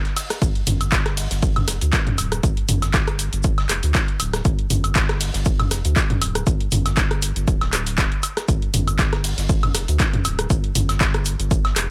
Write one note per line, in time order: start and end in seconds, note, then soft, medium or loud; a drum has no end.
0.05 snare soft
0.05 closed hi-hat soft
0.16 open hi-hat medium
0.16 open hi-hat loud
0.16 high woodblock medium
0.16 shaker medium
0.30 cross-stick medium
0.30 snare soft
0.30 closed hi-hat medium
0.30 shaker soft
0.42 0.62 G1 loud
0.42 kick loud
0.42 closed hi-hat medium
0.42 shaker medium
0.42 shaker soft
0.55 closed hi-hat soft
0.66 1.27 G1 medium
0.66 mid tom medium
0.66 open hi-hat loud
0.66 shaker medium
0.81 closed hi-hat medium
0.81 high woodblock medium
0.81 shaker soft
0.92 kick loud
0.92 snare loud
0.92 clap loud
0.92 closed hi-hat medium
0.92 shaker medium
0.92 shaker soft
1.05 cross-stick medium
1.05 snare soft
1.05 closed hi-hat soft
1.17 open hi-hat loud
1.17 open hi-hat medium
1.17 shaker medium
1.31 1.64 G1 medium
1.31 snare medium
1.31 closed hi-hat medium
1.31 shaker soft
1.42 kick loud
1.42 closed hi-hat medium
1.42 shaker medium
1.42 shaker soft
1.56 closed hi-hat soft
1.56 mid tom medium
1.56 high woodblock medium
1.68 1.79 F1 medium
1.68 cross-stick soft
1.68 snare soft
1.68 open hi-hat loud
1.68 shaker medium
1.81 1.91 D2 medium
1.81 closed hi-hat medium
1.81 closed hi-hat soft
1.81 shaker soft
1.93 kick loud
1.93 snare loud
1.93 clap loud
1.93 closed hi-hat medium
1.93 shaker medium
1.93 shaker soft
2.07 closed hi-hat soft
2.07 mid tom medium
2.18 2.39 D1 loud
2.18 open hi-hat loud
2.18 high woodblock medium
2.18 shaker medium
2.32 cross-stick medium
2.32 closed hi-hat medium
2.32 shaker soft
2.43 2.64 G1 loud
2.43 kick loud
2.43 closed hi-hat medium
2.43 shaker soft
2.43 shaker medium
2.57 closed hi-hat soft
2.69 3.29 G1 medium
2.69 mid tom loud
2.69 open hi-hat loud
2.69 shaker medium
2.82 snare soft
2.82 closed hi-hat medium
2.82 high woodblock medium
2.82 shaker soft
2.94 kick loud
2.94 snare loud
2.94 clap loud
2.94 closed hi-hat medium
2.94 shaker medium
2.94 shaker soft
3.07 cross-stick medium
3.07 closed hi-hat soft
3.19 open hi-hat loud
3.19 shaker medium
3.33 3.66 G1 medium
3.33 closed hi-hat medium
3.33 shaker soft
3.43 kick loud
3.43 closed hi-hat medium
3.43 shaker medium
3.43 shaker soft
3.58 snare medium
3.58 closed hi-hat soft
3.58 high woodblock medium
3.69 3.81 F1 medium
3.69 cross-stick soft
3.69 clap medium
3.69 open hi-hat loud
3.69 shaker medium
3.83 3.92 D2 medium
3.83 closed hi-hat soft
3.83 open hi-hat medium
3.83 shaker soft
3.95 kick loud
3.95 snare loud
3.95 clap loud
3.95 closed hi-hat medium
3.95 shaker soft
3.95 shaker medium
4.08 closed hi-hat soft
4.20 4.41 D1 medium
4.20 open hi-hat loud
4.20 high woodblock medium
4.20 shaker medium
4.33 cross-stick medium
4.33 snare soft
4.33 closed hi-hat medium
4.33 shaker soft
4.45 4.66 G1 loud
4.45 kick loud
4.45 closed hi-hat soft
4.45 shaker medium
4.45 shaker soft
4.59 closed hi-hat soft
4.70 5.30 G1 medium
4.70 mid tom loud
4.70 open hi-hat loud
4.70 shaker medium
4.84 closed hi-hat medium
4.84 high woodblock medium
4.84 shaker soft
4.95 kick loud
4.95 snare loud
4.95 clap loud
4.95 closed hi-hat medium
4.95 shaker medium
4.95 shaker soft
5.08 cross-stick medium
5.08 snare soft
5.08 closed hi-hat soft
5.20 open hi-hat medium
5.20 open hi-hat loud
5.20 shaker medium
5.34 5.68 G1 medium
5.34 snare medium
5.34 closed hi-hat medium
5.34 shaker soft
5.45 kick loud
5.45 closed hi-hat medium
5.45 shaker medium
5.45 shaker soft
5.60 closed hi-hat soft
5.60 mid tom medium
5.60 high woodblock medium
5.71 5.82 F1 loud
5.71 cross-stick soft
5.71 snare soft
5.71 open hi-hat loud
5.71 shaker medium
5.85 5.94 D2 medium
5.85 closed hi-hat soft
5.85 closed hi-hat medium
5.85 shaker soft
5.96 kick loud
5.96 snare loud
5.96 clap loud
5.96 closed hi-hat medium
5.96 shaker soft
5.96 shaker medium
6.10 closed hi-hat soft
6.10 mid tom loud
6.21 6.42 D1 medium
6.21 open hi-hat loud
6.21 high woodblock medium
6.21 shaker medium
6.35 cross-stick medium
6.35 closed hi-hat medium
6.35 shaker soft
6.47 6.67 G1 loud
6.47 kick loud
6.47 closed hi-hat soft
6.47 shaker medium
6.47 shaker soft
6.61 closed hi-hat soft
6.71 7.32 G1 medium
6.71 mid tom loud
6.71 open hi-hat loud
6.71 shaker medium
6.86 snare soft
6.86 closed hi-hat soft
6.86 high woodblock medium
6.86 shaker soft
6.97 kick loud
6.97 snare loud
6.97 clap loud
6.97 closed hi-hat medium
6.97 shaker medium
6.97 shaker soft
7.11 cross-stick medium
7.11 closed hi-hat soft
7.22 open hi-hat loud
7.22 shaker medium
7.36 7.47 G1 medium
7.36 closed hi-hat soft
7.36 shaker soft
7.48 8.07 D1 loud
7.48 kick loud
7.48 closed hi-hat soft
7.48 shaker medium
7.48 shaker soft
7.61 snare soft
7.61 closed hi-hat soft
7.61 high woodblock medium
7.73 cross-stick soft
7.73 clap medium
7.73 open hi-hat loud
7.73 shaker medium
7.86 closed hi-hat soft
7.86 open hi-hat medium
7.86 shaker soft
7.98 kick loud
7.98 snare loud
7.98 clap loud
7.98 closed hi-hat soft
7.98 shaker medium
7.98 shaker soft
8.12 closed hi-hat soft
8.23 open hi-hat loud
8.23 high woodblock medium
8.23 shaker medium
8.37 cross-stick medium
8.37 snare soft
8.37 closed hi-hat soft
8.37 shaker soft
8.48 8.69 G1 loud
8.48 kick loud
8.48 closed hi-hat medium
8.48 shaker medium
8.48 shaker soft
8.62 closed hi-hat soft
8.74 9.34 G1 medium
8.74 mid tom medium
8.74 open hi-hat loud
8.74 shaker medium
8.88 closed hi-hat soft
8.88 high woodblock medium
8.88 shaker soft
8.99 kick loud
8.99 snare loud
8.99 clap loud
8.99 closed hi-hat medium
8.99 shaker medium
8.99 shaker soft
9.13 cross-stick medium
9.13 snare soft
9.13 closed hi-hat soft
9.24 open hi-hat loud
9.24 open hi-hat medium
9.24 shaker medium
9.38 9.71 G1 medium
9.38 snare medium
9.38 closed hi-hat soft
9.38 shaker soft
9.49 kick loud
9.49 closed hi-hat soft
9.49 shaker medium
9.49 shaker soft
9.63 closed hi-hat soft
9.63 mid tom medium
9.63 high woodblock medium
9.74 9.86 F1 loud
9.74 cross-stick soft
9.74 snare soft
9.74 open hi-hat loud
9.74 shaker medium
9.88 9.97 D2 medium
9.88 closed hi-hat soft
9.88 shaker soft
9.99 kick loud
9.99 snare loud
9.99 clap loud
9.99 closed hi-hat soft
9.99 shaker medium
9.99 shaker soft
10.13 closed hi-hat soft
10.13 mid tom medium
10.25 10.46 D1 medium
10.25 open hi-hat loud
10.25 high woodblock medium
10.25 shaker medium
10.39 cross-stick medium
10.39 closed hi-hat medium
10.39 shaker soft
10.50 10.71 G1 loud
10.50 kick loud
10.50 closed hi-hat medium
10.50 shaker medium
10.50 shaker soft
10.64 closed hi-hat soft
10.75 11.35 G1 medium
10.75 mid tom medium
10.75 open hi-hat loud
10.75 shaker medium
10.89 snare soft
10.89 closed hi-hat medium
10.89 high woodblock medium
10.89 shaker soft
11.00 kick loud
11.00 snare loud
11.00 clap loud
11.00 closed hi-hat medium
11.00 shaker medium
11.00 shaker soft
11.14 cross-stick medium
11.14 closed hi-hat soft
11.25 open hi-hat loud
11.25 shaker medium
11.39 11.73 G1 medium
11.39 closed hi-hat soft
11.39 shaker soft
11.51 kick loud
11.51 closed hi-hat medium
11.51 shaker medium
11.51 shaker soft
11.65 snare soft
11.65 closed hi-hat soft
11.65 high woodblock medium
11.76 11.87 F1 loud
11.76 cross-stick soft
11.76 clap medium
11.76 open hi-hat loud
11.76 shaker medium